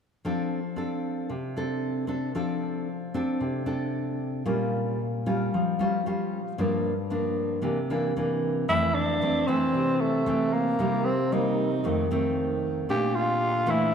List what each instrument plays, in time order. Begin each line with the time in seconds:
0.25 nylon-string guitar F3 C4 D4 A4
0.76 nylon-string guitar C4 D4 A4
1.29 nylon-string guitar C3
1.56 nylon-string guitar C4 D4 A4
2.07 nylon-string guitar C4 D4 A4
2.35 nylon-string guitar F3 C4 D4 A4
3.14 nylon-string guitar C4 D4 A4
3.41 nylon-string guitar C3
3.66 nylon-string guitar C4 D4 A4
4.46 nylon-string guitar A#2 G3 C#4 F4
5.26 nylon-string guitar G3 C#4 F4
5.54 nylon-string guitar F3
5.79 nylon-string guitar G3 C#4 F4
6.06 nylon-string guitar G3 C#4 F4
6.58 nylon-string guitar G2 F3 A#3 D4
7.10 nylon-string guitar F3 A#3 D4
7.62 nylon-string guitar C3 E3 A#3 D4
7.90 nylon-string guitar E3 A#3 D4
8.16 nylon-string guitar E3 A#3 D4
8.68 nylon-string guitar F2 E3 A3 C4, tenor saxophone E4
8.95 tenor saxophone D4
9.22 nylon-string guitar E3 A3 C4
9.47 nylon-string guitar E3 A3 C4, tenor saxophone C4
9.74 nylon-string guitar C3
10.01 tenor saxophone A3
10.26 nylon-string guitar E3 A3 C4
10.53 tenor saxophone A#3
10.79 nylon-string guitar C3 G3 A#3 D#4
11.05 tenor saxophone C4
11.32 nylon-string guitar G3 A#3 D#4, tenor saxophone D#4
11.84 nylon-string guitar F2 D#3 A3 C4
12.11 nylon-string guitar D#3 A3 C4
12.89 nylon-string guitar A#2 A3 D4, tenor saxophone G4
13.15 tenor saxophone F4
13.66 nylon-string guitar E3 A3 D4, tenor saxophone E4